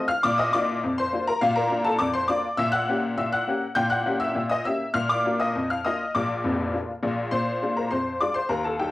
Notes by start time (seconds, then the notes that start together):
Already playing: C4 F4
0.08 F5 F6
0.23 A#2 D5 D6
0.38 D#5 D#6
0.53 A#3 D4 F4 D5 D6
0.84 F2
0.98 C5 C6
1.13 A#3 D4 F4
1.27 A#4 A#5
1.41 A#2 F4 F5
1.56 A#4 A#5
1.71 A#3 D4 F4
1.84 A4 A5
1.98 F2 D5 D6
2.13 C5 C6
2.28 A#3 D4 F4 D5 D6
2.57 A#2 E5 E6
2.72 F#5 F#6
2.88 A#3 C#4 G4
3.17 A#2 E5 E6
3.33 F#5 F#6
3.48 A#3 C#4 G4
3.75 A#2 G5 G6
3.90 F#5 F#6
4.06 A#3 C#4 G4
4.20 E5 E6
4.35 A#2
4.49 D#5 D#6
4.65 A#3 C#4 G4 E5 E6
4.94 A#2 F5 F6
5.09 D5 D6
5.25 A#3 D4 F4
5.40 D#5 D#6
5.55 F2
5.70 F5 F6
5.85 A#3 D4 F4 D#5 D#6
6.15 A#1 A#2 D5 D6
6.44 F1 F2
6.73 A#3 D4 F4
7.03 A#1 A#2
7.31 A#2 C5 C6
7.62 G#3 D4 F4
7.77 A#4 A#5
7.91 F2 C5 C6
8.21 G#3 D4 F4 D5 D6
8.34 C5 C6
8.49 D#2 A#4 A#5
8.64 A4 A5
8.79 G3 D#4 G4 G5